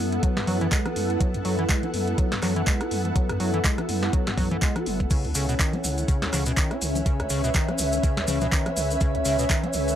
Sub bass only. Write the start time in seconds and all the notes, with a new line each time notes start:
0.00 F#2
0.47 F#2
0.96 F#2
1.34 F#2
1.45 F#2
1.94 F#2
2.42 F#2
2.91 F#2
3.30 F#2
3.40 F#2
3.89 F#2
4.38 F#2
4.86 F#1
5.25 C#2
5.35 C#2
5.84 C#2
6.33 C#2
6.82 C#2
7.20 C#2
7.30 C#2
7.79 C#2
8.28 C#2
8.77 C#2
9.15 C#2
9.25 C#2
9.74 C#2